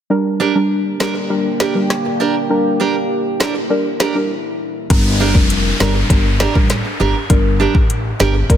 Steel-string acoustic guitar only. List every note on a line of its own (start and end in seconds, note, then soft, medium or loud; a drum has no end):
0.40 0.54 D4 medium
0.40 0.54 G4 medium
0.40 0.55 A#4 medium
1.00 1.14 D4 medium
1.00 1.14 G4 medium
1.00 1.14 A#4 medium
1.15 muted steel-string acoustic guitar stroke soft
1.60 1.74 D4 medium
1.60 1.74 G4 medium
1.60 1.75 A#4 medium
2.05 muted steel-string acoustic guitar stroke soft
2.20 2.34 D4 medium
2.20 2.34 G4 medium
2.20 2.35 A#4 medium
2.80 2.94 D4 medium
2.80 2.94 G4 medium
2.80 2.95 A#4 medium
3.40 3.54 D4 medium
3.40 3.54 G4 medium
3.40 3.54 A#4 medium
3.55 muted steel-string acoustic guitar stroke soft
4.00 4.14 D4 medium
4.00 4.14 G4 medium
4.00 4.15 A#4 medium
5.20 5.34 D4 medium
5.20 5.34 G4 medium
5.20 5.35 A#4 medium
5.80 5.94 D4 medium
5.80 5.94 G4 medium
5.80 5.94 A#4 medium
5.95 muted steel-string acoustic guitar stroke soft
6.40 6.54 D4 medium
6.40 6.54 G4 medium
6.40 6.55 A#4 medium
6.85 muted steel-string acoustic guitar stroke soft
7.00 7.14 D4 medium
7.00 7.14 G4 medium
7.00 7.15 A#4 medium
7.60 7.74 D4 medium
7.60 7.74 G4 medium
7.60 7.75 A#4 medium
8.20 8.34 D4 medium
8.20 8.34 G4 loud
8.20 8.33 A#4 loud
8.35 muted steel-string acoustic guitar stroke soft